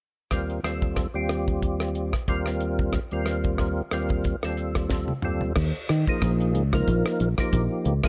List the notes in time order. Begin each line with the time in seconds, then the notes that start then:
0.31 D#2 G3 C4 F4 A#4, kick, cross-stick, closed hi-hat
0.50 closed hi-hat
0.63 D#2 G3 C4 F4 A4, cross-stick, closed hi-hat
0.82 kick, closed hi-hat
0.96 kick, cross-stick, closed hi-hat
1.14 D#2 G3 C4 F4 G4
1.29 cross-stick, closed hi-hat
1.48 kick, closed hi-hat
1.63 kick, closed hi-hat
1.80 cross-stick, closed hi-hat
1.95 closed hi-hat
2.13 kick, cross-stick, closed hi-hat
2.28 D#2 G3 C4 F4 A#4, kick, closed hi-hat
2.46 cross-stick, closed hi-hat
2.60 closed hi-hat
2.79 kick
2.93 kick, cross-stick, closed hi-hat
3.11 D#2 G3 C4 F4 A#4, closed hi-hat
3.26 cross-stick, closed hi-hat
3.44 kick, closed hi-hat
3.58 kick, cross-stick, closed hi-hat
3.91 D#2 G3 C4 F4 A#4, cross-stick, closed hi-hat
4.09 kick, closed hi-hat
4.24 kick, closed hi-hat
4.43 D#2 G3 C4 F4 A4, cross-stick
4.57 closed hi-hat
4.75 kick, cross-stick, closed hi-hat
4.90 kick, snare
5.08 high tom
5.22 D#2 G3 C4 F4 A4, mid tom
5.41 floor tom
5.56 D#2, kick, cross-stick, crash
5.75 closed hi-hat
5.89 D#3, cross-stick, closed hi-hat
6.07 F3 A#3 D#4 G#4, kick, closed hi-hat
6.22 A#1, kick, cross-stick, closed hi-hat
6.40 closed hi-hat
6.55 C#2, closed hi-hat
6.73 F3 A#3 D#4 A#4, kick, cross-stick, closed hi-hat
6.88 A#1, kick, closed hi-hat
7.06 cross-stick, closed hi-hat
7.20 A#1, closed hi-hat
7.38 F3 A#3 D#4 G4, kick, cross-stick, closed hi-hat
7.53 A#1, kick, closed hi-hat
7.85 C#2, closed hi-hat
8.04 F3 A#3 D#4 G#4, kick, cross-stick